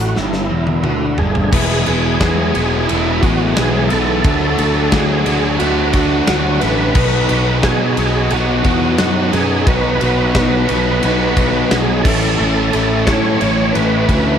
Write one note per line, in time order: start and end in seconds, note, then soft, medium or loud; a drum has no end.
0.00 0.13 A1 medium
0.00 0.15 A2 loud
0.00 0.19 F#4 loud
0.15 0.49 G1 medium
0.15 0.49 G2 medium
0.15 1.15 E4 medium
0.15 snare medium
0.33 snare medium
0.49 0.83 E1 medium
0.49 0.83 E2 medium
0.67 high tom medium
0.83 1.17 D2 medium
0.83 1.17 D3 loud
0.83 1.19 F#4 medium
0.83 mid tom medium
1.18 1.51 G1 medium
1.18 1.51 G2 loud
1.18 2.19 G#4 medium
1.18 floor tom medium
1.22 1.46 A3 medium
1.22 1.47 B3 medium
1.28 1.49 C4 medium
1.28 1.50 D4 medium
1.33 1.51 E4 medium
1.33 1.53 F4 medium
1.33 floor tom medium
1.39 1.54 G4 medium
1.39 1.56 A4 medium
1.45 1.52 B4 medium
1.45 1.59 C5 medium
1.50 1.83 E1 medium
1.50 1.85 E2 medium
1.50 1.86 B2 loud
1.50 1.86 E3 loud
1.50 1.87 G#3 loud
1.50 1.80 B3 medium
1.50 4.23 B3 medium
1.50 1.80 E4 medium
1.50 1.86 E4 loud
1.50 4.23 E4 medium
1.50 1.80 G#4 medium
1.50 4.22 B4 medium
1.50 1.81 B4 medium
1.50 1.60 D5 medium
1.50 4.22 G#5 medium
1.50 kick loud
1.50 crash loud
1.54 1.88 B3 loud
1.54 1.88 G#4 loud
1.86 2.18 E1 medium
1.86 2.19 E2 medium
1.86 2.19 B2 medium
1.86 2.20 E3 medium
1.86 2.20 G#3 medium
1.86 2.95 B3 medium
1.86 2.21 B3 medium
1.86 2.96 E4 medium
1.86 2.20 E4 medium
1.86 2.96 G#4 medium
1.86 2.21 G#4 medium
1.86 2.96 B4 medium
1.86 ride medium
2.20 2.53 E2 medium
2.20 2.51 E2 medium
2.20 2.53 B2 medium
2.20 2.54 E3 medium
2.20 2.55 G#3 medium
2.20 2.55 B3 medium
2.20 2.54 E4 loud
2.20 2.91 G#4 medium
2.20 2.56 G#4 loud
2.20 kick medium
2.20 snare loud
2.20 ride medium
2.54 2.86 E1 medium
2.54 2.87 E2 loud
2.54 2.87 B2 loud
2.54 2.88 E3 loud
2.54 2.89 G#3 loud
2.54 2.89 B3 loud
2.54 2.89 E4 loud
2.54 2.90 G#4 loud
2.54 ride medium
2.87 3.20 E1 medium
2.87 3.21 E2 medium
2.87 3.22 B2 medium
2.87 3.22 E3 medium
2.87 3.23 G#3 medium
2.87 3.24 B3 medium
2.87 3.23 E4 medium
2.87 3.24 G#4 medium
2.87 ride loud
3.21 3.53 A1 medium
3.21 3.56 E2 medium
3.21 3.56 B2 medium
3.21 3.57 E3 medium
3.21 3.57 G#3 medium
3.21 3.58 B3 medium
3.21 3.55 E4 loud
3.21 3.54 F#4 medium
3.21 kick medium
3.21 ride medium
3.25 3.59 G#4 loud
3.55 3.88 B1 medium
3.55 3.90 E2 loud
3.55 3.90 B2 medium
3.55 3.91 E3 loud
3.55 3.91 G#3 loud
3.55 3.91 E4 loud
3.55 3.91 G#4 medium
3.55 snare loud
3.55 ride loud
3.59 3.92 B3 loud
3.59 3.92 G#4 loud
3.88 4.23 E2 medium
3.88 4.23 B2 medium
3.88 4.24 E3 loud
3.88 4.23 E4 medium
3.88 4.95 A4 loud
3.88 snare soft
3.88 ride medium
3.92 4.22 B1 medium
3.92 4.24 G#3 medium
3.92 4.24 B3 medium
3.92 4.24 G#4 loud
4.23 4.55 D2 medium
4.23 4.57 D3 loud
4.23 4.58 F#3 medium
4.23 4.51 A3 medium
4.23 4.58 A3 loud
4.23 6.94 A3 medium
4.23 4.52 D4 medium
4.23 6.93 D4 medium
4.23 4.59 D4 loud
4.23 4.52 F#4 medium
4.23 6.93 F#4 medium
4.23 4.60 F#4 loud
4.23 4.52 A4 medium
4.23 kick loud
4.23 ride loud
4.57 4.89 D2 medium
4.57 4.91 D3 medium
4.57 4.91 F#3 medium
4.57 5.67 A3 medium
4.57 4.92 A3 medium
4.57 5.67 D4 medium
4.57 4.93 D4 medium
4.57 5.67 F#4 medium
4.57 4.94 F#4 medium
4.57 ride medium
4.91 5.23 D2 loud
4.91 5.25 D3 medium
4.91 5.25 F#3 loud
4.91 5.25 A3 medium
4.91 5.27 D4 medium
4.91 5.27 F#4 medium
4.91 5.56 G#4 medium
4.91 kick medium
4.91 snare loud
4.91 ride loud
5.25 5.57 D2 medium
5.25 5.59 D3 medium
5.25 5.59 F#3 medium
5.25 5.59 A3 medium
5.25 5.60 D4 loud
5.25 5.61 F#4 loud
5.25 ride medium
5.59 6.21 D2 medium
5.59 5.93 D3 medium
5.59 5.93 F#3 medium
5.59 5.94 A3 medium
5.59 5.94 D4 loud
5.59 6.25 F#4 medium
5.59 5.95 F#4 loud
5.59 ride loud
5.93 6.26 D3 medium
5.93 6.27 F#3 medium
5.93 6.27 A3 medium
5.93 6.27 D4 medium
5.93 6.29 F#4 loud
5.93 kick medium
5.93 ride medium
6.27 6.59 D2 medium
6.27 6.59 D3 loud
6.27 6.61 F#3 loud
6.27 6.60 A3 loud
6.27 6.61 D4 loud
6.27 6.62 F#4 medium
6.27 6.62 F#4 loud
6.27 snare loud
6.27 ride loud
6.60 6.93 A1 medium
6.60 6.93 D3 medium
6.60 6.94 F#3 medium
6.60 6.94 A3 medium
6.60 6.94 D4 medium
6.60 6.96 F#4 loud
6.60 7.59 B4 loud
6.60 snare soft
6.60 ride medium
6.94 7.26 B1 medium
6.94 7.27 B2 loud
6.94 7.28 F#3 medium
6.94 7.23 B3 medium
6.94 7.29 B3 loud
6.94 9.64 B3 medium
6.94 7.23 D#4 medium
6.94 9.64 D#4 medium
6.94 7.29 D#4 loud
6.94 9.65 F#4 medium
6.94 7.30 F#4 loud
6.94 7.24 F#4 medium
6.94 9.64 B4 medium
6.94 7.24 B4 medium
6.94 kick loud
6.94 crash loud
7.28 7.60 B1 medium
7.28 7.62 B2 medium
7.28 7.63 F#3 medium
7.28 8.38 B3 medium
7.28 7.64 B3 medium
7.28 8.38 D#4 medium
7.28 7.64 D#4 medium
7.28 8.38 F#4 medium
7.28 7.65 F#4 medium
7.28 8.38 B4 medium
7.28 ride medium
7.63 7.95 B2 medium
7.63 7.94 B2 medium
7.63 7.96 F#3 medium
7.63 7.97 B3 medium
7.63 7.97 D#4 loud
7.63 7.98 F#4 loud
7.63 8.34 G#4 medium
7.63 kick medium
7.63 snare loud
7.63 ride medium
7.97 8.28 B1 medium
7.97 8.29 B2 loud
7.97 8.30 F#3 loud
7.97 8.31 B3 loud
7.97 8.32 D#4 loud
7.97 8.32 F#4 loud
7.97 ride medium
8.30 8.62 B1 loud
8.30 8.63 B2 medium
8.30 8.64 F#3 medium
8.30 8.64 B3 medium
8.30 8.64 D#4 medium
8.30 8.98 F#4 medium
8.30 8.65 F#4 loud
8.30 ride loud
8.64 8.95 E2 medium
8.64 8.96 B2 medium
8.64 8.96 F#3 medium
8.64 8.97 B3 medium
8.64 8.98 D#4 medium
8.64 8.98 F#4 loud
8.64 kick medium
8.64 ride medium
8.97 9.30 F#2 medium
8.97 9.30 B2 loud
8.97 9.31 F#3 loud
8.97 9.31 B3 loud
8.97 9.32 D#4 loud
8.97 9.31 F#4 medium
8.97 9.32 F#4 loud
8.97 snare loud
8.97 ride loud
9.31 9.63 F#2 medium
9.31 9.64 B2 medium
9.31 9.64 F#3 medium
9.31 9.65 B3 loud
9.31 9.65 D#4 loud
9.31 9.66 F#4 loud
9.31 9.68 G#4 medium
9.31 ride medium
9.65 9.97 B1 loud
9.65 9.97 B2 loud
9.65 9.98 F#3 medium
9.65 9.99 B3 loud
9.65 9.94 B3 medium
9.65 9.99 D#4 loud
9.65 9.94 D#4 medium
9.65 12.02 D#4 medium
9.65 10.00 F#4 loud
9.65 12.02 F#4 medium
9.65 9.95 F#4 medium
9.65 11.77 B4 loud
9.65 12.03 B4 medium
9.65 9.95 B4 medium
9.65 kick loud
9.65 ride loud
9.98 10.32 B1 medium
9.98 10.31 B2 medium
9.98 10.32 F#3 medium
9.98 10.33 B3 medium
9.98 11.09 B3 medium
9.98 10.34 D#4 medium
9.98 11.10 D#4 medium
9.98 10.34 F#4 medium
9.98 11.10 F#4 medium
9.98 11.10 B4 medium
9.98 ride medium
10.33 10.65 B1 medium
10.33 10.65 B2 medium
10.33 10.66 F#3 medium
10.33 10.66 B3 medium
10.33 10.67 D#4 medium
10.33 10.68 F#4 loud
10.33 kick medium
10.33 snare loud
10.33 ride loud
10.66 11.00 B1 medium
10.66 10.99 B2 medium
10.66 10.99 F#3 medium
10.66 11.00 B3 loud
10.66 11.01 D#4 loud
10.66 11.01 F#4 loud
10.66 ride medium
11.00 11.34 B2 medium
11.00 11.35 F#3 medium
11.00 11.35 B3 medium
11.00 11.35 D#4 medium
11.00 11.36 F#4 loud
11.00 ride loud
11.04 11.63 B1 medium
11.35 11.68 B2 medium
11.35 11.69 F#3 medium
11.35 11.69 B3 medium
11.35 11.70 D#4 medium
11.35 11.70 F#4 medium
11.35 kick medium
11.35 ride medium
11.69 12.01 B1 medium
11.69 12.02 B2 loud
11.69 12.02 F#3 loud
11.69 12.03 B3 loud
11.69 12.03 D#4 loud
11.69 12.03 F#4 loud
11.69 12.02 G#4 medium
11.69 snare loud
11.69 ride loud
12.03 12.35 A1 medium
12.03 12.36 A2 medium
12.03 12.37 E3 medium
12.03 14.38 A3 medium
12.03 12.59 A3 medium
12.03 12.38 A3 loud
12.03 14.38 C#4 medium
12.03 12.59 C#4 medium
12.03 12.39 C#4 loud
12.03 14.38 E4 medium
12.03 12.59 E4 medium
12.03 12.39 E4 loud
12.03 13.09 A4 loud
12.03 12.59 A4 medium
12.03 14.38 C#5 medium
12.03 kick loud
12.03 snare soft
12.03 crash loud
12.37 12.69 A1 medium
12.37 12.70 A2 medium
12.37 12.71 E3 loud
12.37 12.72 A3 loud
12.37 12.73 C#4 loud
12.37 12.73 E4 loud
12.71 13.04 A1 medium
12.71 13.04 A2 medium
12.71 13.05 E3 medium
12.71 13.80 A3 medium
12.71 13.06 A3 medium
12.71 13.81 C#4 medium
12.71 13.07 C#4 medium
12.71 13.81 E4 medium
12.71 13.07 E4 medium
12.71 13.81 A4 medium
12.71 ride medium
13.05 13.38 A2 medium
13.05 13.37 A2 medium
13.05 13.39 E3 medium
13.05 13.40 A3 medium
13.05 13.40 C#4 medium
13.05 13.41 E4 loud
13.05 13.76 C#5 loud
13.05 kick medium
13.05 snare loud
13.05 ride loud
13.39 13.71 A1 medium
13.39 13.72 A2 medium
13.39 13.73 E3 loud
13.39 13.74 A3 loud
13.39 13.74 C#4 loud
13.39 13.74 E4 loud
13.39 ride medium
13.72 14.05 A1 medium
13.72 14.06 A2 medium
13.72 14.07 E3 medium
13.72 14.08 A3 medium
13.72 14.08 C#4 medium
13.72 14.09 E4 medium
13.72 14.38 B4 loud
13.72 ride loud
14.07 14.38 D2 medium
14.07 14.38 A2 medium
14.07 14.38 E3 medium
14.07 14.38 A3 medium
14.07 14.38 C#4 medium
14.07 14.38 E4 medium
14.07 kick medium
14.07 ride medium